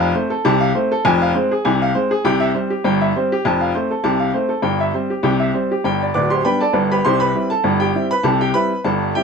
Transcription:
0.00 F5
0.15 A3 C4 C5
0.30 A4
0.45 C2 C3 A5
0.61 F5
0.75 A3 C4 C5
0.92 A4
1.05 F1 F2 G#5
1.22 F5
1.35 G#3 C4 C5
1.51 G#4
1.65 C2 C3 G#5
1.82 F5
1.95 G#3 C4 C5
2.11 G#4
2.25 C2 C3 G5
2.40 E5
2.55 G3 C4 C5
2.70 G4
2.84 G1 G2 G5
3.01 E5
3.16 G3 C4 C5
3.32 G4
3.45 F1 F2 A5
3.61 F5
3.75 A3 C4 C5
3.91 A4
4.04 C2 C3 A5
4.20 F5
4.34 A3 C4 C5
4.49 A4
4.62 G1 G2 G5
4.80 E5
4.94 G3 C4 C5
5.10 G4
5.23 C2 C3 G5
5.40 E5
5.54 G3 C4 C5
5.71 G4
5.84 G1 G2 G5
6.02 D5
6.14 D1 D2 B4 D5 D6
6.30 G4 C5 C6
6.45 G3 B3 D4 B4 G5 B5
6.61 A4 D5 A5
6.73 G1 G2 B4
6.92 G4 B4 B5
7.05 C2 C3 C5 C6
7.20 B4 B5
7.35 G3 C4 E4
7.50 A4 A5
7.64 G1 G2
7.80 G4 G5
7.95 G3 C4 E4
8.11 B4 B5
8.23 C2 C3 A4 A5
8.41 G4 G5
8.54 G3 C4 E4 B4 B5
8.84 G1 G2 A4 A5
9.15 G3 C4 E4 G4 G5

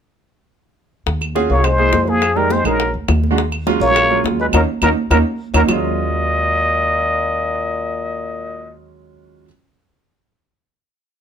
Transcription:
1.06 D#2, high bongo, high conga
1.21 high bongo, high conga, claves
1.35 C#4 F4 F#4 G#4, high bongo, high conga
1.50 C2 A#3 C#5
1.57 C#4 F4 F#4 G#4
1.64 G#3 C5, high bongo, high conga, claves
1.78 A#3 E4 G#4, high bongo, high conga
1.93 F2, high bongo, low bongo, high conga
2.07 F3 G#4, high bongo, high conga
2.22 high bongo, high conga, claves
2.36 G3 G#3 D#4 G4 A#4, high bongo, high conga
2.50 G#3 C5, high bongo, high conga
2.64 A#1 F#3 G#3 D#4 G#4 A#4, high bongo, high conga, claves
2.80 high bongo, high conga
2.94 D2, high conga
3.08 D#2, high bongo, low bongo, high conga, claves
3.23 high bongo, high conga
3.31 G#3 D4 F#4
3.38 high bongo, high conga
3.52 high bongo, high conga, claves
3.67 F#3 G#3 C#4 F4, high bongo, high conga
3.80 A#1 A#3 C#5
3.89 F#3 G#3 C#4 F4
3.96 high bongo, high conga, claves
4.10 F#3 G#3 C#4 F4, high bongo, high conga
4.24 D#2, high bongo, low bongo, high conga
4.40 G#3 B4, high bongo
4.53 D#2 F#3 A#3 C#4 D#4 A#4, low bongo, high conga, claves
4.82 D#2 F#3 A#3 C#4 D#4 A#4, low bongo, high conga, claves
5.10 D#2 F#3 A#3 C#4 D#4 A#4, low bongo, high conga, claves
5.54 D#2 F#3 A#3 C#4 D#4 A#4, low bongo, high conga, claves
5.67 D#2 A#2 F#3 G#3 C#4 D#5, low bongo, low conga, claves
5.71 F4

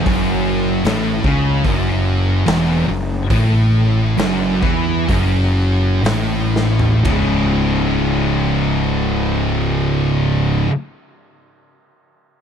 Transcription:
0.06 F#1 F#2, kick, open hi-hat
0.85 A1 A2, snare, open hi-hat
1.24 C#2 C#3, kick
1.64 F#1 F#2, kick, open hi-hat
2.46 E1 E2, snare, open hi-hat
2.89 F#1 F#2
3.30 A1 A2, kick, open hi-hat
4.17 F#1 F#2, snare, open hi-hat
4.63 E2 E3, kick
5.08 F#1 F#2, kick, open hi-hat
6.03 A1 A2, snare, open hi-hat
6.56 snare
6.79 floor tom
7.05 C#1 C#2 G#2 C#3 G#3, kick, floor tom, ride bell
7.09 E4

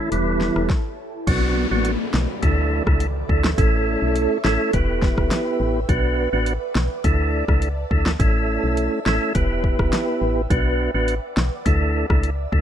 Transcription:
0.12 E1 E3 G3 B3 E4, closed hi-hat
0.41 snare
0.56 E1, cross-stick
0.70 kick, snare
1.27 B1 F#3 B3 D4 F#4 D5, kick, closed hi-hat, crash, downlifter
1.71 A1 F#3 B3 D4 F#4
1.85 closed hi-hat
2.14 B1, snare
2.42 D2 A3 D4 E4 A4 E5, kick, closed hi-hat
2.86 C#2 A3 D4 E4 A4, kick, cross-stick
3.00 closed hi-hat
3.29 D2 A3 D4 E4 A4, kick
3.44 snare
3.58 A1 A3 C#4 E4 A4, kick, closed hi-hat
4.02 B1
4.16 closed hi-hat
4.44 A1 A3 C#4 E4 A4, snare
4.73 E1 B3 E4 G4 B4, kick, closed hi-hat
5.02 kick, snare
5.18 E1, kick, cross-stick
5.31 snare, closed hi-hat
5.60 A1
5.89 B1 B3 D4 F#4 B4 D5, kick, closed hi-hat
6.33 A1 B3 D4 F#4 B4
6.46 closed hi-hat
6.75 B1, snare
7.04 D2 A3 D4 E4 A4 A5 E6, kick, closed hi-hat
7.48 C#2 A3 D4 E4 A4, kick, cross-stick
7.62 closed hi-hat
7.91 D2 A3 D4 E4 A4, kick
8.06 snare
8.19 A1 A3 C#4 E4 A4 E5, kick, closed hi-hat
8.64 B1
8.77 closed hi-hat
9.06 A1 A3 C#4 E4 A4, snare
9.35 E1 B3 E4 G4 B4, kick, closed hi-hat
9.64 kick
9.79 E1, kick, cross-stick
9.93 snare, closed hi-hat
10.22 A1
10.50 B1 B3 D4 F#4 B4 D5, kick, closed hi-hat
10.94 A1 B3 D4 F#4 B4
11.08 closed hi-hat
11.37 B1, snare
11.65 D2 A3 D4 E4 A4 E5 A5, kick, closed hi-hat
12.10 C#2 A3 D4 E4 A4, kick, cross-stick
12.23 closed hi-hat
12.52 D2 A3 D4 E4 A4, kick

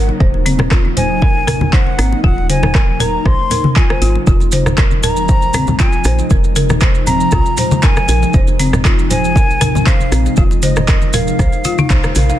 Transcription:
Already playing: G#1 C#3 F#3 A#3 D#4
0.09 muted conga
0.20 D#1 C5, kick, high conga
0.34 muted conga
0.46 C4, open hi-hat, mid tom
0.59 cross-stick, muted conga, high conga, low conga
0.71 F4, kick, cross-stick, clap
0.85 high conga
0.97 C5 G#5, open hi-hat, muted conga, low conga
1.22 G#1 A#4, kick, muted conga, high conga
1.47 A#4, cross-stick, open hi-hat, mid tom, muted conga, high conga, low conga
1.61 high conga, low conga
1.73 C5 F#5, kick, clap
1.87 muted conga
1.98 G#1 C4, cross-stick, open hi-hat
2.12 muted conga
2.24 D#1 F4 F#5, kick, high conga
2.38 muted conga
2.50 C5 G#5, open hi-hat, mid tom
2.63 cross-stick, muted conga, high conga, low conga
2.75 A#4, kick, cross-stick, clap
3.00 A#4 A#5, open hi-hat, muted conga, low conga
3.26 A#1 C5 C6, kick, cross-stick, muted conga
3.50 A#4, open hi-hat, muted conga, high conga, low conga
3.64 mid tom, high conga
3.76 F4 G#5, kick, clap
3.90 C5, cross-stick, muted conga, high conga
4.02 G#1 F4, open hi-hat
4.15 muted conga
4.27 F1 C3 F3 G#3 D#4 F4, kick, high conga, maracas
4.40 muted conga, maracas
4.52 C5, open hi-hat, mid tom, maracas
4.66 cross-stick, muted conga, high conga, low conga, maracas
4.77 A#4, kick, cross-stick, clap, maracas
4.91 high conga, maracas
5.03 A#4 A#5, open hi-hat, muted conga, low conga, maracas
5.16 maracas
5.28 A#1 C5, kick, muted conga, high conga, maracas
5.42 maracas
5.54 C4, cross-stick, open hi-hat, mid tom, muted conga, high conga, low conga, maracas
5.67 high conga, low conga, maracas
5.79 F4 G#5, kick, clap, maracas
5.92 muted conga, maracas
6.04 A#1 C5, cross-stick, open hi-hat, maracas
6.19 muted conga, maracas
6.30 F1 A#4, kick, high conga, maracas
6.44 muted conga, maracas
6.56 A#4, open hi-hat, mid tom, maracas
6.69 cross-stick, muted conga, high conga, low conga, maracas
6.81 C5, kick, cross-stick, clap, maracas
6.95 maracas
7.07 C4 A#5, open hi-hat, muted conga, low conga, maracas
7.20 maracas
7.31 C2 F4, kick, cross-stick, muted conga, maracas
7.46 maracas
7.57 C5, open hi-hat, muted conga, high conga, low conga, maracas
7.71 mid tom, high conga, maracas
7.82 A#4 G#5, kick, clap, maracas
7.96 cross-stick, muted conga, high conga, maracas
8.08 A#1 A#4, open hi-hat, maracas
8.22 muted conga, maracas
8.33 F1 C5, kick, high conga, maracas
8.47 muted conga, maracas
8.59 C4, open hi-hat, mid tom, maracas
8.73 cross-stick, muted conga, high conga, low conga, maracas
8.85 F4, kick, cross-stick, clap, maracas
8.99 high conga, maracas
9.10 C5 G#5, open hi-hat, muted conga, low conga, maracas
9.24 maracas
9.35 A#1 A#4, kick, muted conga, high conga, maracas
9.50 maracas
9.61 A#4, cross-stick, open hi-hat, mid tom, muted conga, high conga, low conga, maracas
9.75 high conga, low conga, maracas
9.87 C5 F5, kick, clap, maracas
10.00 muted conga, maracas
10.12 A#1 C4, cross-stick, open hi-hat, maracas
10.26 muted conga, maracas
10.36 F1 F4 F5, kick, high conga, maracas
10.51 muted conga, maracas
10.62 C5 D#5, open hi-hat, mid tom, maracas
10.76 cross-stick, muted conga, high conga, low conga, maracas
10.88 A#4, kick, cross-stick, clap, maracas
11.02 high conga, maracas
11.13 A#4 F5, open hi-hat, muted conga, low conga, maracas
11.27 maracas
11.39 C2 C5, kick, cross-stick, muted conga, maracas
11.53 maracas
11.64 F4, open hi-hat, muted conga, high conga, maracas
11.78 D#4, mid tom, high conga, maracas
11.90 A#1 C5, kick, clap, maracas
12.04 cross-stick, muted conga, high conga, maracas
12.15 A#1 A#4 F5, open hi-hat, mid tom, maracas
12.29 F5, muted conga, maracas

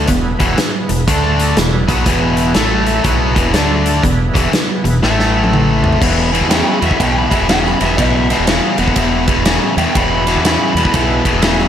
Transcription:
0.05 E1 E2 B2 B3 E4 G#4 B4, kick, closed hi-hat
0.39 E1 E2 B2 E3, kick, closed hi-hat
0.56 muted distorted electric guitar stroke, muted fingered electric bass stroke, snare, closed hi-hat
0.89 E1 E2 B2, closed hi-hat
1.07 D2 D3 A3 D4 A4 D5, kick, closed hi-hat
1.40 closed hi-hat
1.56 E1 E2 B2 B3 E4 G#4 B4, snare, closed hi-hat
1.88 B1 B2 F#3 B3, kick, closed hi-hat
2.05 E1 E2 B2 E3, kick, closed hi-hat
2.37 closed hi-hat
2.54 A1 A2 E3 A3 E4 A4 E5, snare, closed hi-hat
2.87 closed hi-hat
3.03 B1 B2 F#3 B3 E4 G#4 B4, kick, closed hi-hat
3.35 E1 E2 B2 E3, kick, closed hi-hat
3.53 D2 D3 A3 D4 A4 D5, snare, closed hi-hat
3.86 closed hi-hat
4.03 E1 E2 B2 B3 E4 G#4 B4, kick, closed hi-hat
4.34 E1 E2 B2 E3, kick, closed hi-hat
4.52 muted distorted electric guitar stroke, muted fingered electric bass stroke, snare, closed hi-hat
4.84 E1 E2 B2, closed hi-hat
5.02 A1 A2 E3 A3 E4 A4 E5, snare
5.19 snare
5.44 high tom
5.53 mid tom
5.71 A3 B3
5.77 C4 D4
5.83 E4 F4, floor tom
5.88 G4 A4
5.93 B4 C5, floor tom
6.00 E1 E2 B2 E4 G#4 B4 D5 E5, kick, crash
6.32 E2 B2, ride
6.41 E2
6.49 E2 C#3 G5, snare, ride
6.68 B5
6.81 E2 B2 E5, ride
6.91 kick
7.00 B1 E2 B2 G5, kick, ride
7.18 B5
7.30 E2 B2 E5, kick, ride
7.41 E1
7.49 E2 C#3 G5, snare, ride
7.65 B5, snare
7.80 E1 E2 B2 E5, ride
7.98 B1 E2 B2 E5, kick, ride
8.30 E2 B2, snare, ride
8.38 E1
8.47 E2 C#3, snare, ride
8.78 E1 E2 B2, ride
8.88 kick
8.96 E1 E2 B2, kick, ride
9.27 E2 B2, kick, ride
9.36 E1
9.45 E2 C#3, snare, ride
9.77 E2 B2 G5, ride
9.94 E1 E2 B2 E4 G#4 B4 E5 B5, kick, ride
10.27 E2 B2 D6, snare, ride
10.35 E2
10.45 E2 C#3 B5, snare, ride
10.75 E2 B2, ride
10.85 kick
10.94 B1 E2 B2, kick, ride
11.25 E2 B2, kick, ride
11.33 E1
11.42 E2 C#3, snare, ride
11.58 snare

